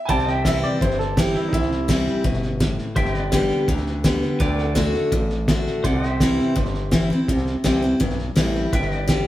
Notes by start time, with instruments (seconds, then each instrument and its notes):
0.05 steel-string acoustic guitar C3, pedal steel guitar C5, upright piano G#5, kick, snare
0.09 fm bass C2, pedal steel guitar D5 G5, upright piano A5
0.18 snare
0.27 upright piano G5, snare
0.35 pedal steel guitar E5
0.45 steel-string acoustic guitar E3 G3 C4 E4, upright piano E5, kick, snare, hi-hat pedal
0.63 upright piano D5, snare
0.81 fm bass G1, steel-string acoustic guitar G2, upright piano C5, kick, snare
0.91 snare
0.99 upright piano A4, snare
1.17 steel-string acoustic guitar E3 G3 C4 E4, upright piano G4, kick, snare, hi-hat pedal
1.35 upright piano E4, snare
1.48 upright piano D#4
1.53 fm bass C2, steel-string acoustic guitar C3, upright piano E4, kick, snare
1.62 snare
1.71 snare
1.88 steel-string acoustic guitar E3 G3 C4 E4, kick, snare, hi-hat pedal
2.07 snare
2.24 fm bass G1, steel-string acoustic guitar B2, kick, snare
2.33 snare
2.43 snare
2.60 steel-string acoustic guitar A2, kick, snare, hi-hat pedal
2.78 snare
2.96 fm bass G1, steel-string acoustic guitar G2, pedal steel guitar C5 E5 G5, kick, snare
3.05 snare
3.14 pedal steel guitar B4, snare
3.22 pedal steel guitar D5
3.32 steel-string acoustic guitar D3 G3 B3 G4, kick, snare, hi-hat pedal
3.50 snare
3.68 fm bass D2, steel-string acoustic guitar D3, kick, snare
3.77 snare
3.86 snare
4.04 steel-string acoustic guitar D3 G3 B3 G4, kick, snare, hi-hat pedal
4.22 snare
4.40 fm bass D2, steel-string acoustic guitar D3, pedal steel guitar B4 D5 G5, kick, snare
4.58 pedal steel guitar F#5, snare
4.65 pedal steel guitar A4
4.75 steel-string acoustic guitar D3 A3 D4 F#4, kick, snare, hi-hat pedal
4.94 snare
5.12 fm bass A1, steel-string acoustic guitar A2, kick, snare
5.30 snare
5.48 steel-string acoustic guitar D3 A3 D4 F#4, kick, snare, hi-hat pedal
5.66 snare
5.84 fm bass C2, steel-string acoustic guitar C3, pedal steel guitar C5 D5 F#5, kick, snare
6.03 pedal steel guitar G5, snare
6.10 pedal steel guitar E5
6.20 steel-string acoustic guitar E3 G3 C4 E4, kick, snare, hi-hat pedal
6.39 snare
6.56 fm bass G1, steel-string acoustic guitar G2, kick, snare
6.65 snare
6.74 snare
6.91 steel-string acoustic guitar E3 G3 C4 E4, kick, snare, hi-hat pedal
7.10 steel-string acoustic guitar C4 E4, snare
7.28 fm bass C2, steel-string acoustic guitar C3, kick, snare
7.37 snare
7.46 snare
7.64 fm bass C2, steel-string acoustic guitar E3 G3 C4 E4, kick, snare, hi-hat pedal
7.82 steel-string acoustic guitar C4 E4, snare
8.00 fm bass B1, steel-string acoustic guitar G2, kick, snare
8.10 snare
8.19 snare
8.36 fm bass A1, steel-string acoustic guitar E3 G3 C4 E4, kick, snare, hi-hat pedal
8.55 snare
8.73 fm bass G1, steel-string acoustic guitar G2, pedal steel guitar B4 E5 G5, kick, snare
8.82 snare
8.91 snare
8.99 pedal steel guitar D5
9.08 steel-string acoustic guitar D3 G3 B3 G4, kick, snare, hi-hat pedal